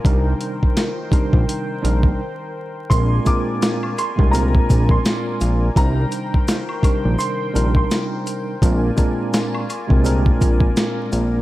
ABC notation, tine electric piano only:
X:1
M:4/4
L:1/16
Q:"Swing 16ths" 1/4=84
K:Cm
V:1 name="Tine electric piano"
[C,G,DEB]4- [C,G,DEB] z [C,G,DEB]4 [C,G,DEB]2 z4 | [B,,A,CDB]2 [B,,A,CDB]4 z [B,,A,CDB] [B,,A,CDB]6- [B,,A,CDB] z | [C,G,DEB]4- [C,G,DEB] z [C,G,DEB]4 [C,G,DEB]6 | [B,,A,CDB]2 [B,,A,CDB]4 z [B,,A,CDB] [B,,A,CDB]6- [B,,A,CDB] z |]